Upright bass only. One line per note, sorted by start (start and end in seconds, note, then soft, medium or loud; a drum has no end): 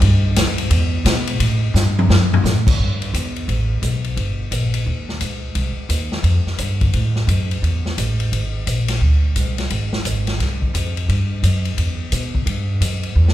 0.02 0.36 G2 medium
0.37 0.70 F#2 loud
0.70 1.04 E2 loud
1.05 1.39 B2 loud
1.40 1.73 A2 medium
1.74 2.08 G2 loud
2.09 2.43 F#2 medium
2.44 2.78 A2 medium
2.79 3.13 G2 medium
3.14 3.47 E2 loud
3.48 3.81 A1 medium
3.82 4.16 B1 medium
4.16 4.51 G1 medium
4.51 4.85 A#1 medium
4.86 5.20 D#2 medium
5.21 5.55 C#2 medium
5.55 5.76 C2 medium
5.77 muted upright bass stroke soft
5.89 6.23 D#2 medium
6.23 6.45 F2 medium
6.47 muted upright bass stroke soft
6.59 6.93 G2 medium
6.94 7.27 A2 medium
7.27 7.62 F#2 medium
7.63 7.97 E2 medium
7.98 8.31 A1 medium
8.32 8.66 G#1 medium
8.67 9.00 A#1 medium
9.01 9.35 D2 medium
9.36 9.70 C2 medium
9.71 10.04 G#1 medium
10.05 10.39 G#1 medium
10.39 10.73 C2 medium
10.74 11.08 F2 medium
11.08 11.42 G2 medium
11.43 11.77 F#2 medium
11.78 12.11 E2 medium
12.12 12.45 B2 medium
12.46 12.80 G2 medium
12.81 13.15 F#2 medium
13.16 13.34 E2 medium